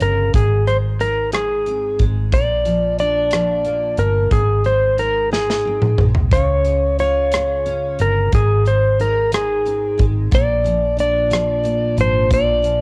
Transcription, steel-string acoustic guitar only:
0.00 0.34 C#3 medium
0.00 0.41 G#3 soft
0.00 0.41 C#4 soft
0.00 0.40 F4 medium
0.33 2.32 G#2 medium
0.68 1.32 G#3 medium
1.00 2.39 D#4 medium
1.33 1.98 G#3 medium
1.66 2.39 C4 medium
1.99 2.39 G#3 medium
2.32 4.30 A#2 medium
2.65 3.31 F3 medium
2.99 4.38 D4 medium
3.32 3.97 F3 medium
3.65 4.38 A#3 medium
3.98 4.38 F3 medium
4.31 6.32 G#2 medium
4.65 5.31 G#3 medium
4.98 6.39 D#4 medium
5.31 5.98 G#3 medium
5.65 6.39 C4 medium
5.98 6.65 G#3 soft
6.33 8.33 C#3 medium
6.65 7.33 G#3 medium
6.99 8.39 F4 medium
7.34 7.99 G#3 medium
7.66 8.39 C#4 medium
7.99 8.39 G#3 medium
8.32 10.31 G#2 medium
8.65 9.31 G#3 medium
9.00 10.39 D#4 medium
9.32 9.97 G#3 medium
9.66 10.39 C4 medium
9.98 10.38 G#3 medium
10.31 12.29 A#2 medium
10.64 11.29 F3 medium
10.97 12.81 D4 medium
11.30 11.95 F3 medium
11.63 12.81 A#3 medium
11.97 12.61 F3 medium
12.30 12.81 A#2 medium
12.62 12.81 F3 medium

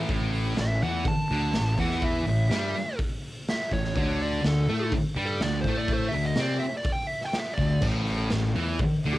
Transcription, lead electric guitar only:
0.61 0.83 E5 loud
0.83 1.06 F#5 medium
1.08 1.77 A5 medium
1.80 2.02 F#5 medium
2.05 2.98 E5 loud
3.50 3.72 E5 loud
3.73 4.19 C#5 medium
4.22 4.44 D5 medium
4.45 4.92 A4 medium
5.26 5.41 A4 loud
5.43 5.58 D5 loud
5.61 5.75 C5 medium
5.78 5.92 D5 medium
5.94 6.07 C5 loud
6.08 6.23 E5 medium
6.26 6.41 D#5 medium
6.41 6.55 D5 medium
6.60 6.73 E5 medium
6.77 6.89 D5 medium
6.92 7.07 G5 medium
7.07 7.20 E5 medium
7.25 7.38 G5 medium
7.40 7.53 E5 loud
7.53 7.84 D5 loud
9.13 9.18 A4 loud

